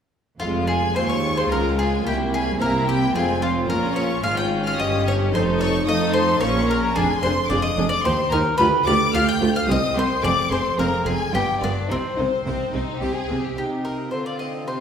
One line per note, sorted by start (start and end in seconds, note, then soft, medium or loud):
0.40 0.91 F1 medium
0.40 0.91 F2 medium
0.40 0.92 F2 medium
0.40 0.91 G#3 medium
0.40 0.65 F4 medium
0.40 0.91 F4 medium
0.40 0.49 F5 loud
0.67 0.93 G#4 medium
0.67 0.95 G#5 loud
0.95 1.46 D#2 medium
0.95 1.49 D#2 medium
0.95 2.03 G#3 medium
0.95 1.35 G#3 soft
0.95 1.35 C4 soft
0.95 2.02 F4 medium
0.95 1.35 F4 medium
0.95 1.08 C5 medium
0.95 1.09 C6 loud
1.09 1.35 C#5 medium
1.09 1.36 C#6 loud
1.37 1.50 C5 medium
1.37 1.51 C6 medium
1.50 2.04 C#2 medium
1.50 2.01 C#2 medium
1.50 1.90 G#3 soft
1.50 1.90 C4 soft
1.50 1.90 F4 medium
1.50 1.77 A#4 medium
1.50 1.78 A#5 loud
1.79 2.04 G#4 medium
1.79 2.05 G#5 medium
2.04 2.55 C2 medium
2.04 2.58 C2 medium
2.04 2.59 C2 medium
2.04 2.58 A#3 medium
2.04 2.59 E4 medium
2.04 2.31 G4 medium
2.04 2.15 G5 loud
2.33 2.58 G#4 medium
2.33 2.59 G#5 loud
2.59 3.14 C2 medium
2.59 3.10 C3 medium
2.59 3.14 C3 medium
2.59 3.13 A#3 medium
2.59 2.99 A#3 soft
2.59 2.99 C4 medium
2.59 3.13 E4 medium
2.59 2.99 E4 medium
2.59 2.86 A#4 medium
2.59 2.86 A#5 medium
2.89 3.13 G4 medium
2.89 3.15 G5 loud
3.14 3.68 F1 medium
3.14 3.68 F2 medium
3.14 3.65 F2 medium
3.14 3.65 G#3 soft
3.14 3.69 C4 medium
3.14 3.65 C4 medium
3.14 3.68 F4 medium
3.14 3.66 F4 soft
3.14 3.40 G#4 medium
3.14 3.41 G#5 medium
3.42 3.67 F4 medium
3.42 3.51 F5 medium
3.69 4.24 A#1 medium
3.69 4.24 A#2 medium
3.69 4.20 A#2 medium
3.69 4.23 C#4 medium
3.69 4.23 F4 medium
3.69 3.95 A#4 medium
3.69 3.96 A#5 loud
3.96 4.22 C#5 medium
3.96 4.24 C#6 loud
4.23 4.77 G#1 medium
4.23 4.78 G#2 medium
4.23 4.75 G#2 medium
4.23 5.31 C#4 medium
4.23 4.64 C#4 soft
4.23 4.77 F4 medium
4.23 4.64 F4 medium
4.23 4.36 F5 loud
4.23 4.37 F6 loud
4.37 4.63 G5 medium
4.37 4.46 G6 medium
4.64 4.79 F5 medium
4.64 4.78 F6 medium
4.79 5.32 G1 medium
4.79 5.29 G2 medium
4.79 5.32 G2 medium
4.79 5.18 C#4 medium
4.79 5.18 F4 medium
4.79 5.33 G4 medium
4.79 5.04 D#5 medium
4.79 5.06 D#6 loud
5.07 5.32 C#5 medium
5.07 5.15 C#6 loud
5.32 5.88 F1 medium
5.32 5.83 F2 medium
5.32 5.87 F2 medium
5.32 5.86 D#4 medium
5.32 5.87 A4 medium
5.32 5.59 C5 medium
5.32 5.42 C6 loud
5.61 5.86 C#5 medium
5.61 5.87 C#6 loud
5.87 6.41 F2 medium
5.87 6.37 F3 medium
5.87 6.40 F3 medium
5.87 6.26 A3 medium
5.87 6.26 D#4 soft
5.87 6.41 D#4 medium
5.87 6.27 F4 medium
5.87 6.41 A4 medium
5.87 6.13 D#5 medium
5.87 6.14 D#6 loud
6.13 6.39 C5 loud
6.13 6.41 C6 loud
6.41 6.95 A#1 medium
6.41 6.95 A#2 medium
6.41 6.92 A#2 medium
6.41 6.92 A#3 soft
6.41 6.95 C#4 medium
6.41 6.92 C#4 medium
6.41 6.92 F4 medium
6.41 6.96 A#4 medium
6.41 6.66 C#5 medium
6.41 6.68 C#6 loud
6.68 6.95 A#4 medium
6.68 6.96 A#5 loud
6.95 7.04 F1 medium
6.95 7.20 F2 medium
6.95 7.04 F2 medium
6.95 7.04 D4 medium
6.95 7.21 G#4 loud
6.95 7.05 G#4 medium
6.95 7.23 G#5 loud
7.20 7.32 F1 medium
7.20 7.47 F2 medium
7.20 7.31 F2 medium
7.20 7.32 D4 medium
7.20 7.32 G#4 medium
7.20 7.48 C5 medium
7.20 7.48 C6 loud
7.49 7.59 F1 medium
7.49 7.75 F2 medium
7.49 7.59 F2 medium
7.49 7.89 G#3 medium
7.49 7.90 D4 medium
7.49 7.59 D4 medium
7.49 7.90 F4 medium
7.49 7.59 G#4 medium
7.49 7.62 D5 medium
7.49 7.63 D6 loud
7.62 7.88 D#5 medium
7.62 7.90 D#6 loud
7.77 7.86 F1 medium
7.77 8.02 F2 medium
7.77 7.86 F2 medium
7.77 7.85 D4 medium
7.77 7.86 G#4 medium
7.89 8.03 D5 loud
7.89 8.04 D6 loud
8.03 8.29 D#2 medium
8.03 8.13 D#2 medium
8.03 8.13 D#4 medium
8.03 8.55 D#4 medium
8.03 8.12 G4 medium
8.03 8.56 G4 medium
8.03 8.30 C5 medium
8.03 8.31 C6 loud
8.29 8.56 D#2 medium
8.29 8.40 D#2 medium
8.29 8.41 D#2 medium
8.29 8.41 D#4 medium
8.29 8.40 G4 medium
8.29 8.57 A#4 loud
8.29 8.37 A#5 loud
8.58 8.84 D2 medium
8.58 8.67 D2 loud
8.58 8.68 D2 medium
8.58 8.67 F4 medium
8.58 8.67 G4 medium
8.58 8.84 B4 loud
8.58 8.66 B5 loud
8.85 9.11 D2 medium
8.85 8.94 D2 medium
8.85 8.95 D2 medium
8.85 8.95 F4 medium
8.85 8.94 G4 medium
8.85 9.12 D5 loud
8.85 9.13 D6 loud
9.13 9.21 D2 medium
9.13 9.38 D2 medium
9.13 9.23 D2 medium
9.13 9.54 F4 medium
9.13 9.22 F4 medium
9.13 9.54 G4 medium
9.13 9.22 G4 medium
9.13 9.27 F5 loud
9.13 9.28 F6 loud
9.27 9.54 G5 loud
9.27 9.55 G6 loud
9.40 9.48 D2 medium
9.40 9.66 D2 medium
9.40 9.49 D2 medium
9.40 9.49 F4 medium
9.40 9.49 G4 medium
9.54 9.68 F5 loud
9.54 9.68 F6 loud
9.66 9.75 C2 loud
9.66 9.94 C2 medium
9.66 9.77 C2 medium
9.66 9.77 C4 medium
9.66 10.20 C4 medium
9.66 9.76 G4 medium
9.66 10.20 G4 medium
9.66 9.95 D#6 loud
9.71 9.96 D#5 loud
9.95 10.21 C2 medium
9.95 10.04 C2 medium
9.95 10.05 C2 medium
9.95 10.04 C4 medium
9.95 10.03 G4 medium
9.95 10.23 C6 loud
9.99 10.23 C5 loud
10.22 10.32 F1 medium
10.22 10.31 F2 loud
10.22 10.49 F2 medium
10.22 10.31 C4 medium
10.22 10.30 G#4 medium
10.22 10.50 D5 loud
10.22 10.50 D6 loud
10.50 10.59 F1 medium
10.50 10.58 F2 medium
10.50 10.76 F2 medium
10.50 10.59 C4 medium
10.50 10.58 G#4 medium
10.50 10.78 C5 medium
10.50 10.78 C6 loud
10.78 10.87 F1 medium
10.78 10.87 F2 medium
10.78 11.04 F2 medium
10.78 11.19 G#3 medium
10.78 10.86 C4 medium
10.78 11.19 C4 medium
10.78 11.19 F4 medium
10.78 10.86 G#4 medium
10.78 11.05 A#4 medium
10.78 11.06 A#5 loud
11.05 11.14 F1 medium
11.05 11.14 F2 medium
11.05 11.32 F2 medium
11.05 11.14 C4 medium
11.05 11.13 G#4 medium
11.05 11.32 G#4 medium
11.05 11.34 G#5 loud
11.32 11.42 G1 medium
11.32 11.41 G2 medium
11.32 11.59 G2 medium
11.32 11.86 B3 medium
11.32 11.43 B3 medium
11.32 11.40 F4 medium
11.32 11.87 F4 medium
11.32 11.61 G4 medium
11.32 11.62 G5 loud
11.60 11.70 G1 medium
11.60 11.69 G2 medium
11.60 11.87 G2 medium
11.60 11.70 B3 medium
11.60 11.89 D4 medium
11.60 11.68 F4 medium
11.60 11.89 D5 medium
11.87 11.98 C2 medium
11.87 11.98 C3 medium
11.87 12.15 C3 medium
11.87 11.98 C4 medium
11.87 11.95 D#4 medium
11.87 12.99 C5 loud
11.92 12.99 C4 medium
12.16 12.26 C2 medium
12.16 12.26 C3 medium
12.16 12.44 C3 medium
12.16 12.27 C4 medium
12.16 12.24 D#4 medium
12.44 12.54 C2 medium
12.44 12.54 C3 medium
12.44 12.72 C3 medium
12.44 12.71 C4 medium
12.44 12.55 C4 medium
12.44 12.87 C4 soft
12.44 12.87 D#4 medium
12.72 12.82 C2 medium
12.72 12.81 C3 medium
12.72 12.99 C3 medium
12.72 12.82 C4 medium
12.72 13.00 D#4 medium
12.99 13.10 C2 medium
12.99 13.10 C3 medium
12.99 13.27 C3 medium
12.99 13.10 C4 medium
12.99 13.42 C4 soft
12.99 13.43 D#4 medium
12.99 13.15 G4 medium
13.14 13.43 G#4 medium
13.29 13.38 C2 medium
13.29 13.55 C3 medium
13.29 13.38 C3 medium
13.29 13.38 C4 medium
13.42 13.57 G4 medium
13.56 14.08 C3 soft
13.56 14.09 C3 soft
13.56 14.09 D#4 soft
13.56 13.84 G4 medium
13.56 14.09 D#5 soft
13.85 14.25 C4 soft
13.85 14.25 D#4 soft
13.85 14.11 A#4 medium
14.11 14.67 D3 soft
14.11 14.63 D3 soft
14.11 14.80 C4 soft
14.11 14.63 F4 medium
14.11 14.25 C5 soft
14.11 14.80 F5 soft
14.26 14.39 D5 medium
14.39 14.80 C4 soft
14.39 14.80 D#4 soft
14.39 14.65 D#5 medium
14.67 14.80 C3 soft
14.67 14.80 C3 medium
14.67 14.80 D#4 soft
14.67 14.80 C5 medium